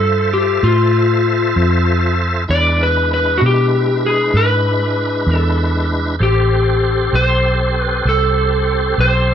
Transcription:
Already playing: fingered electric bass G2, tonewheel organ F4 A4 C5 E5, electric slide guitar A4
0.34 electric slide guitar G4
0.63 fingered electric bass A2, electric slide guitar F4
1.56 fingered electric bass F2
2.48 fingered electric bass E2, tonewheel organ G#3 D4 E4 B4, electric slide guitar D5
2.83 electric slide guitar B4
3.14 electric slide guitar B4
3.38 electric slide guitar F#4
3.42 fingered electric bass B2
3.46 electric slide guitar G4
4.06 electric slide guitar G#4
4.34 fingered electric bass G#2, electric slide guitar B4
5.27 fingered electric bass E2
5.37 electric slide guitar A4
6.19 fingered electric bass A1, tonewheel organ C4 G4 A4 C5, electric slide guitar G4
7.13 fingered electric bass B1, electric slide guitar C5
7.79 electric slide guitar B4
8.05 fingered electric bass C2, electric slide guitar A4
8.98 fingered electric bass B1, electric slide guitar C5

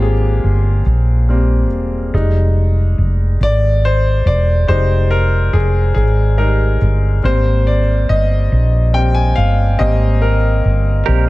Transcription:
Already playing: fretless electric bass G#1, grand piano G3 G#3 A#3 C4 F4 G4 G#4 A#4
0.02 grand piano G#4
0.44 fretless electric bass G1
0.86 fretless electric bass A#1
1.29 grand piano G3 A#3 C4
1.71 fretless electric bass E1
2.14 fretless electric bass F1, grand piano G3 G#3 D#4
2.98 fretless electric bass F1
3.41 fretless electric bass G#1, grand piano D5
3.85 grand piano C5
4.26 fretless electric bass E1, grand piano D5
4.67 fretless electric bass F1, grand piano G#3 D#4 G4 C5
5.11 grand piano A#4
5.53 fretless electric bass F1, grand piano G#4
5.95 fretless electric bass G#1, grand piano G#4
6.38 grand piano G3 G#3 D#4 A#4
6.81 fretless electric bass G1
7.23 fretless electric bass G#1, grand piano G3 A#3 C4 C5
7.67 grand piano D5
8.09 fretless electric bass G1, grand piano D#5
8.52 fretless electric bass A#1
8.93 grand piano G3 A#3 C4 G5
9.15 grand piano G#5
9.36 fretless electric bass G1, grand piano F5
9.78 fretless electric bass G#1, grand piano G3 A#3 C4 D#5
10.22 grand piano A#4
10.65 fretless electric bass G1
11.06 fretless electric bass A#1, grand piano G3 A#3 C4, clean electric guitar G4 A#4

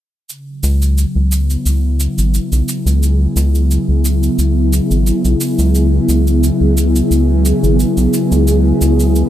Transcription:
0.29 analog synth pad C#3, cabasa
0.47 analog synth pad F#3
0.63 analog synth bass C#2, cabasa
0.82 cabasa
0.98 analog synth pad B3, cabasa
1.15 analog synth bass C#2
1.24 analog synth pad E4
1.32 cabasa
1.50 cabasa
1.66 analog synth bass C#2, cabasa
2.00 cabasa
2.18 analog synth bass G#1, cabasa
2.34 cabasa
2.52 analog synth bass B1, cabasa
2.62 analog synth pad G#4
2.69 cabasa
2.86 analog synth bass C#2, cabasa
3.03 cabasa
3.36 analog synth bass C#2, cabasa
3.55 cabasa
3.71 cabasa
3.88 analog synth bass C#2
4.05 cabasa
4.23 cabasa
4.38 analog synth bass C#2, cabasa
4.73 cabasa
4.91 analog synth bass G#1, cabasa
5.07 cabasa
5.25 analog synth bass B1, cabasa
5.41 cabasa
5.59 analog synth bass C#2, cabasa
5.75 cabasa
6.09 analog synth bass C#2, cabasa
6.27 cabasa
6.44 cabasa
6.61 analog synth bass C#2
6.78 cabasa
6.96 cabasa
7.11 analog synth bass C#2, cabasa
7.45 cabasa
7.63 analog synth bass G#1, cabasa
7.80 cabasa
7.97 analog synth bass B1, cabasa
8.14 cabasa
8.32 analog synth bass C#2, cabasa
8.48 cabasa
8.81 analog synth bass C#2, cabasa
9.00 cabasa
9.16 cabasa

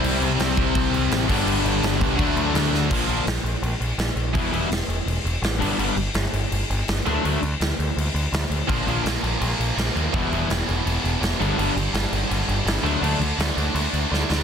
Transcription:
Already playing: distorted electric guitar C3 G3 C4, overdriven electric guitar C3 G3 C4 E4
0.03 picked electric bass C2, crash
0.22 picked electric bass C2, crash
0.39 picked electric bass C2, snare, crash
0.57 picked electric bass C2, kick, crash
0.75 picked electric bass C2, kick, crash
0.93 picked electric bass C2, crash
1.11 picked electric bass A1, snare, crash
1.27 picked electric bass G1, overdriven electric guitar G2 D3 G3 B3, distorted electric guitar G2 D3 G3, kick, crash
1.31 overdriven electric guitar D4
1.46 picked electric bass G1, crash
1.64 picked electric bass G1, crash
1.82 picked electric bass G1, snare, crash
2.01 picked electric bass C2, kick, crash
2.16 picked electric bass D2, distorted electric guitar D3 A3, overdriven electric guitar D3 F#3, kick, crash
2.20 overdriven electric guitar A3 D4, distorted electric guitar D4
2.36 picked electric bass D2, crash
2.54 picked electric bass D2, snare, crash
2.71 picked electric bass D2, snare
2.91 picked electric bass A#1, overdriven electric guitar A#2 D3 F3 A#3 D4, kick, crash
3.08 picked electric bass A#1, overdriven electric guitar A#2 D3 F3 A#3 D4, crash
3.26 picked electric bass A#1, snare, crash
3.43 picked electric bass A#1, crash
3.62 picked electric bass A#1, crash
3.80 picked electric bass A#1, crash
3.98 picked electric bass A#1, snare, crash
4.15 picked electric bass A#1, crash
4.34 picked electric bass E1, distorted electric guitar E2 B2, overdriven electric guitar E3 G3 B3 E4, kick, crash
4.51 picked electric bass E1, distorted electric guitar E2 B2, overdriven electric guitar E3 G3 B3 E4, crash
4.70 picked electric bass E1, snare, crash
4.88 picked electric bass E1, crash
5.06 picked electric bass E1, crash
5.24 picked electric bass E1, crash
5.42 picked electric bass A1, snare, crash
5.59 picked electric bass G1, overdriven electric guitar G2 D3 G3 B3 D4, crash
5.78 picked electric bass G1, overdriven electric guitar G2 D3 G3 B3 D4, crash
5.96 picked electric bass G1, crash
6.14 picked electric bass G1, snare, crash
6.33 picked electric bass G1, crash
6.51 picked electric bass G1, crash
6.70 picked electric bass G1, crash
6.88 picked electric bass G1, snare, crash
7.06 picked electric bass D2, overdriven electric guitar D3 F#3 A3 D4, crash
7.24 picked electric bass D2, overdriven electric guitar D3 F#3 A3 D4, crash
7.42 picked electric bass D2, crash
7.60 picked electric bass D2, snare, crash
7.79 picked electric bass D2, crash
7.96 picked electric bass D2, crash
8.14 picked electric bass D2, crash
8.32 picked electric bass D2, snare, crash
8.50 picked electric bass D2, crash
8.68 picked electric bass A#1, overdriven electric guitar A#2 D3 F3 A#3 D4, distorted electric guitar A#2 F3 A#3, kick, crash
8.86 picked electric bass A#1, overdriven electric guitar A#2 D3 F3 A#3 D4, crash
9.03 picked electric bass A#1, distorted electric guitar A#2 F3 A#3, crash
9.07 snare
9.23 picked electric bass A#1, distorted electric guitar A#2 F3 A#3, crash
9.38 picked electric bass A#1, distorted electric guitar A#2 F3 A#3, crash
9.59 picked electric bass A#1, crash
9.76 picked electric bass A#1, distorted electric guitar A#2 F3 A#3, snare, crash
9.94 picked electric bass D#2, distorted electric guitar A#2 F3 A#3, crash
10.12 picked electric bass E1, distorted electric guitar E2 B2 E3, overdriven electric guitar E3 G3 B3, kick, crash
10.16 overdriven electric guitar E4
10.31 picked electric bass E1, distorted electric guitar E2 B2, overdriven electric guitar E3 G3 B3 E4, crash
10.49 picked electric bass E1, distorted electric guitar E2 B2 E3, snare, crash
10.67 picked electric bass E1, distorted electric guitar E2 B2 E3, crash
10.84 picked electric bass E1, distorted electric guitar E2 B2 E3, crash
11.04 picked electric bass E1, crash
11.20 picked electric bass E1, distorted electric guitar E2 B2 E3, snare, crash
11.38 picked electric bass G1, distorted electric guitar G2 D3 G3, overdriven electric guitar G2 D3 G3 B3, crash
11.43 overdriven electric guitar D4
11.56 picked electric bass G1, distorted electric guitar G2 D3 G3, overdriven electric guitar G2 D3 G3 B3 D4, crash
11.75 picked electric bass G1, crash
11.93 picked electric bass G1, distorted electric guitar G2 D3 G3, snare, crash
12.12 picked electric bass G1, distorted electric guitar G2 D3 G3, crash
12.28 picked electric bass G1, distorted electric guitar G2 D3 G3, crash
12.48 picked electric bass G1, crash
12.65 picked electric bass G1, distorted electric guitar G2 D3 G3, snare, crash
12.83 picked electric bass D2, distorted electric guitar D3 A3 D4, overdriven electric guitar D3 F#3 A3 D4, crash
13.01 picked electric bass D2, distorted electric guitar D3 A3 D4, overdriven electric guitar D3 F#3 A3 D4, crash
13.19 picked electric bass D2, crash
13.37 picked electric bass D2, distorted electric guitar D3 A3 D4, snare, crash
13.56 picked electric bass D2, distorted electric guitar D3 A3 D4, crash
13.74 picked electric bass D2, distorted electric guitar D3 A3 D4, crash
13.93 picked electric bass D2, crash
14.10 picked electric bass D2, distorted electric guitar D3 A3 D4, snare
14.29 picked electric bass D2, distorted electric guitar D3 A3 D4, snare

